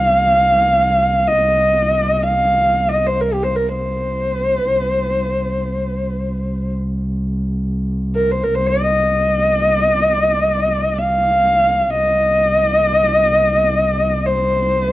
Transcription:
Already playing: double bass C2, horsehead fiddle F5
1.28 horsehead fiddle D#5
2.23 horsehead fiddle F5
2.89 horsehead fiddle D#5
3.07 horsehead fiddle C5
3.21 horsehead fiddle A#4
3.33 horsehead fiddle G4
3.44 horsehead fiddle C5
3.56 horsehead fiddle A#4
3.69 horsehead fiddle C5
4.67 double bass C2
8.15 horsehead fiddle A#4
8.31 horsehead fiddle C5
8.44 horsehead fiddle A#4
8.55 horsehead fiddle C5
8.67 horsehead fiddle D#5
10.99 horsehead fiddle F5
11.90 double bass C2, horsehead fiddle D#5
14.26 horsehead fiddle C5

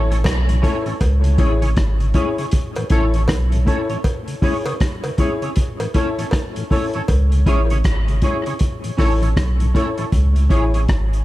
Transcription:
Already playing: sub bass A1
0.10 tonewheel organ A2 E3, clean electric guitar C#4 E4 A4 C#5, closed hi-hat
0.24 sub bass B1, kick, cross-stick, closed hi-hat, cowbell
0.49 tonewheel organ A2 E3, grand piano A4 C#5, closed hi-hat
0.62 tonewheel organ A3 C#4 E4, clean electric guitar C#4 E4 A4 C#5, grand piano E4 A4 C#5, kick, closed hi-hat
0.86 tonewheel organ A2 E3, clean electric guitar C#4 E4 A4 C#5, closed hi-hat
1.01 sub bass C#2, kick, closed hi-hat, cowbell
1.24 tonewheel organ C#3, closed hi-hat
1.37 sub bass A1, tonewheel organ G#3 C#4 E4, clean electric guitar C#4 E4 G#4 C#5, grand piano E4 G#4 C#5, kick, closed hi-hat
1.62 tonewheel organ C#3, clean electric guitar C#4 E4 G#4 C#5, closed hi-hat
1.77 sub bass G#1, kick, cross-stick, closed hi-hat
2.00 tonewheel organ C#3, closed hi-hat
2.14 tonewheel organ G#3 C#4 E4, clean electric guitar C#4 E4 G#4 C#5, grand piano E4 G#4 C#5, kick, closed hi-hat
2.38 tonewheel organ C#3, clean electric guitar C#4 E4 G#4 C#5, closed hi-hat
2.51 kick, closed hi-hat
2.76 tonewheel organ A2 E3, closed hi-hat, cowbell
2.90 sub bass A1, tonewheel organ A3 C#4 E4, clean electric guitar C#4 E4 A4 C#5, grand piano E4 A4 C#5, kick, closed hi-hat
3.14 tonewheel organ A2 E3, clean electric guitar C#4 E4 A4 C#5, closed hi-hat
3.28 sub bass B1, kick, cross-stick, closed hi-hat, cowbell
3.52 tonewheel organ A2 E3, grand piano A4 C#5, closed hi-hat
3.65 tonewheel organ A3 C#4 E4, clean electric guitar C#4 E4 A4 C#5, grand piano E4 A4 C#5, kick, closed hi-hat
3.90 tonewheel organ A2 E3, clean electric guitar C#4 E4 A4 C#5, closed hi-hat
4.04 kick, closed hi-hat, cowbell
4.28 tonewheel organ C#3, closed hi-hat
4.42 tonewheel organ G#3 C#4 E4, clean electric guitar C#4 E4 G#4 C#5, grand piano E4 G#4 C#5, kick, open hi-hat
4.66 tonewheel organ C#3, clean electric guitar C#4 E4 G#4 C#5, closed hi-hat, cowbell
4.80 kick, cross-stick, closed hi-hat
5.04 tonewheel organ C#3, closed hi-hat, cowbell
5.18 tonewheel organ G#3 C#4 E4, clean electric guitar C#4 E4 G#4 C#5, grand piano E4 G#4 C#5, kick, closed hi-hat
5.42 tonewheel organ C#3, clean electric guitar C#4 E4 G#4 C#5, closed hi-hat
5.56 kick, closed hi-hat
5.80 tonewheel organ A2 E3, closed hi-hat, cowbell
5.94 tonewheel organ A3 C#4 E4, clean electric guitar C#4 E4 A4 C#5, grand piano E4 A4 C#5, kick, closed hi-hat
6.18 tonewheel organ A2 E3, clean electric guitar C#4 E4 A4 C#5, closed hi-hat
6.31 kick, cross-stick, closed hi-hat, cowbell
6.56 tonewheel organ A2 E3, grand piano A4 C#5, closed hi-hat
6.70 tonewheel organ A3 C#4 E4, clean electric guitar C#4 E4 A4 C#5, grand piano E4 A4 C#5, kick, open hi-hat
6.94 tonewheel organ A2 E3, clean electric guitar C#4 E4 A4 C#5, closed hi-hat
7.08 sub bass C#2, kick, closed hi-hat, cowbell
7.32 tonewheel organ C#3, closed hi-hat
7.46 sub bass A1, tonewheel organ G#3 C#4 E4, clean electric guitar C#4 E4 G#4 C#5, grand piano E4 G#4 C#5, kick, closed hi-hat
7.70 tonewheel organ C#3, clean electric guitar C#4 E4 G#4 C#5, closed hi-hat
7.84 sub bass G#1, kick, cross-stick, closed hi-hat
8.08 tonewheel organ C#3, closed hi-hat
8.22 tonewheel organ G#3 C#4 E4, clean electric guitar C#4 E4 G#4 C#5, grand piano E4 G#4 C#5, kick, closed hi-hat
8.46 tonewheel organ C#3, clean electric guitar C#4 E4 G#4 C#5, closed hi-hat
8.59 kick, closed hi-hat
8.84 tonewheel organ A2 E3, closed hi-hat
8.97 sub bass A1, tonewheel organ A3 C#4 E4, clean electric guitar C#4 E4 A4 C#5, grand piano E4 A4 C#5, kick, cross-stick, open hi-hat
9.22 tonewheel organ A2 E3, clean electric guitar C#4 E4 A4 C#5, closed hi-hat
9.37 sub bass B1, kick, cross-stick, closed hi-hat
9.60 tonewheel organ A2 E3, closed hi-hat
9.74 tonewheel organ A3 C#4 E4, clean electric guitar C#4 E4 A4 C#5, grand piano E4 A4 C#5, kick, closed hi-hat
9.97 tonewheel organ A2 E3, clean electric guitar C#4 E4 A4 C#5, grand piano A4 C#5, closed hi-hat
10.12 sub bass C#2, kick, closed hi-hat
10.36 closed hi-hat
10.49 sub bass A1, clean electric guitar C#4 E4 G#4 C#5, grand piano E4 G#4 C#5, kick, closed hi-hat
10.74 clean electric guitar C#4 E4 G#4 C#5, closed hi-hat
10.88 sub bass G#1, kick, cross-stick, closed hi-hat
11.13 closed hi-hat

